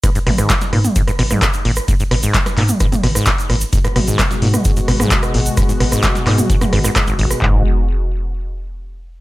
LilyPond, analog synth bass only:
\new Staff \with { instrumentName = "Analog synth bass" } { \clef bass \time 4/4 \key gis \minor \tempo 4 = 130 r8 gis,,8 r8 gis,8 r8 gis,,8 r8 gis,,8 | r8 gis,,8 r8 gis,8 r8 gis,,8 r8 gis,,8 | r8 gis,,8 r8 gis,8 r8 gis,,8 r8 gis,,8 | r8 gis,,8 r8 gis,8 r8 gis,,8 r8 gis,,8 |
gis,,8 r2. r8 | }